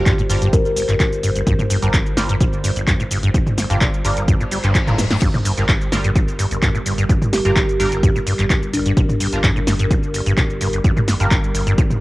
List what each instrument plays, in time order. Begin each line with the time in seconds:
Already playing: sub bass G1, synth stab G3 D4 F4 A#4, ambient pad G3 F4 C5
0.06 acid bass G2, kick, clap, closed hi-hat, shaker
0.18 acid bass A2, shaker
0.30 sub bass G1, acid bass G2, synth stab G3 D4 F4 A#4, open hi-hat, shaker
0.42 acid bass G2, closed hi-hat, shaker
0.53 acid bass G2, kalimba A#4, kick, closed hi-hat, shaker
0.65 sub bass G1, kalimba A#4, shaker
0.76 acid bass G1, open hi-hat, shaker
0.89 sub bass G1, acid bass G2, clap, closed hi-hat, shaker
1.00 acid bass C3, kick, clap, closed hi-hat, shaker
1.12 sub bass G1, shaker
1.23 acid bass G2, open hi-hat, shaker
1.36 acid bass G1, closed hi-hat, shaker
1.47 sub bass G1, acid bass G2, kick, closed hi-hat, shaker
1.59 acid bass A2, mid tom, shaker
1.70 acid bass G2, open hi-hat, shaker
1.82 sub bass G1, acid bass G2, synth stab G3 D4 F4 A#4, closed hi-hat, shaker
1.94 acid bass G2, kick, clap, closed hi-hat, shaker
2.06 shaker
2.17 sub bass G1, acid bass G1, synth stab G3 D4 F4 A#4, snare, open hi-hat, shaker
2.29 acid bass G2, closed hi-hat, shaker
2.40 acid bass C3, kick, closed hi-hat, shaker
2.53 sub bass G1, shaker
2.64 acid bass G2, open hi-hat, shaker
2.76 sub bass G1, acid bass G1, closed hi-hat, shaker
2.87 acid bass G2, kick, clap, closed hi-hat, shaker
3.00 sub bass G1, acid bass A2, shaker
3.11 acid bass G2, open hi-hat, shaker
3.23 acid bass G2, closed hi-hat, shaker
3.34 sub bass G1, acid bass G2, kick, closed hi-hat, shaker
3.47 mid tom, shaker
3.58 acid bass G1, snare, open hi-hat, shaker
3.70 sub bass G1, acid bass G2, synth stab G3 D4 F4 A#4, closed hi-hat, shaker
3.81 acid bass C3, kick, clap, closed hi-hat, shaker
3.94 shaker
4.05 sub bass G1, acid bass G2, synth stab G3 D4 F4 A#4, open hi-hat, shaker
4.17 acid bass G1, closed hi-hat, shaker
4.28 acid bass G2, kick, closed hi-hat, reverse cymbal, shaker
4.40 sub bass G1, acid bass A2, shaker
4.51 acid bass G3, open hi-hat, shaker
4.64 sub bass G1, acid bass G2, synth stab G3 D4 F4 C5, clap, closed hi-hat, shaker
4.75 acid bass G2, kick, clap, closed hi-hat, shaker
4.87 sub bass D1, acid bass A2, synth stab G3 D4 F4 A#4, mid tom, shaker
4.98 acid bass G2, snare, open hi-hat, shaker
5.11 acid bass G2, snare, closed hi-hat, shaker
5.22 sub bass G1, acid bass G2, ambient pad G4 A#4, kick, closed hi-hat, crash, shaker
5.34 acid bass A2, mid tom, shaker
5.45 acid bass G2, open hi-hat, shaker
5.57 sub bass G1, acid bass G2, synth stab G3 D4 F4 A#4, closed hi-hat, shaker
5.69 acid bass G2, kick, clap, closed hi-hat, shaker
5.81 shaker
5.92 acid bass G1, sub bass G1, synth stab G3 D4 F4 A#4, snare, open hi-hat, shaker
6.04 acid bass G2, closed hi-hat, shaker
6.16 acid bass C3, kick, closed hi-hat, shaker
6.28 sub bass G1, shaker
6.39 acid bass G2, open hi-hat, shaker
6.51 acid bass G1, sub bass G1, closed hi-hat, shaker
6.62 acid bass G2, kick, clap, closed hi-hat, shaker
6.75 sub bass G1, acid bass A2, shaker
6.86 acid bass G2, open hi-hat, shaker
6.98 acid bass G2, closed hi-hat, shaker
7.09 sub bass G1, acid bass G2, kick, closed hi-hat, shaker
7.22 mid tom, shaker
7.33 acid bass G1, kalimba G4, snare, open hi-hat, shaker
7.45 sub bass G1, acid bass G2, synth stab G3 D4 F4 A#4, kalimba G4, closed hi-hat, shaker
7.56 acid bass C3, kick, clap, closed hi-hat, shaker
7.69 shaker
7.80 sub bass G1, acid bass G2, synth stab G3 D4 F4 A#4, open hi-hat, shaker
7.92 acid bass G1, closed hi-hat, shaker
8.03 acid bass G2, kick, closed hi-hat, shaker
8.15 sub bass G1, acid bass A2, shaker
8.27 acid bass G2, open hi-hat, shaker
8.39 sub bass G1, acid bass G2, clap, closed hi-hat, shaker
8.50 acid bass G2, kick, clap, closed hi-hat, shaker
8.62 sub bass G1, shaker
8.73 acid bass G1, kalimba D4, open hi-hat, shaker
8.86 acid bass G2, closed hi-hat, shaker
8.97 sub bass G1, acid bass C3, kick, closed hi-hat, shaker
9.09 mid tom, shaker
9.20 acid bass G2, open hi-hat, shaker
9.33 acid bass G1, sub bass G1, synth stab G3 D4 F4 A#4, closed hi-hat, shaker
9.44 acid bass G2, kick, clap, closed hi-hat, shaker
9.56 acid bass A2, shaker
9.67 sub bass G1, acid bass G2, snare, open hi-hat, shaker
9.79 acid bass G2, closed hi-hat, shaker
9.91 acid bass G2, kick, closed hi-hat, shaker
10.03 sub bass G1, shaker
10.14 acid bass G1, open hi-hat, shaker
10.26 sub bass G1, acid bass G2, closed hi-hat, shaker
10.38 acid bass C3, kick, clap, closed hi-hat, shaker
10.50 sub bass G1, shaker
10.61 acid bass G2, open hi-hat, shaker
10.73 acid bass G1, closed hi-hat, shaker
10.84 sub bass G1, acid bass G2, kick, closed hi-hat, shaker
10.97 acid bass A2, mid tom, shaker
11.08 acid bass G2, snare, open hi-hat, shaker
11.20 sub bass G1, acid bass G2, synth stab G3 D4 F4 A#4, closed hi-hat, shaker
11.31 acid bass G2, kick, clap, closed hi-hat, shaker
11.44 shaker
11.55 acid bass G1, sub bass G1, open hi-hat, shaker
11.67 acid bass G2, closed hi-hat, shaker
11.78 acid bass C3, kick, closed hi-hat, shaker
11.90 sub bass G1, mid tom, shaker